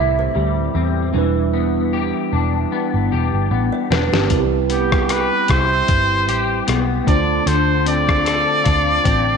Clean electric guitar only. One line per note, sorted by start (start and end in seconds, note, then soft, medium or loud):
0.00 1.15 A2 medium
0.00 0.35 G3 medium
0.00 0.74 C4 medium
0.00 2.32 E4 medium
0.35 1.13 G3 medium
0.75 1.23 C4 medium
1.14 4.64 E3 medium
1.54 2.72 B3 medium
1.93 3.12 G4 medium
2.33 3.89 D4 medium
2.72 3.51 B3 medium
3.12 5.09 G4 medium
3.51 4.70 B3 medium
3.91 4.39 D4 medium
4.70 5.89 B3 soft
5.09 6.27 G4 medium
5.49 7.16 E4 medium
6.29 7.16 G4 medium
6.67 7.16 B3 medium
7.07 7.45 D3 medium
7.46 9.37 D3 medium
7.86 9.03 C4 medium
8.25 9.37 A4 medium
8.64 9.37 F4 medium
9.04 9.37 C4 medium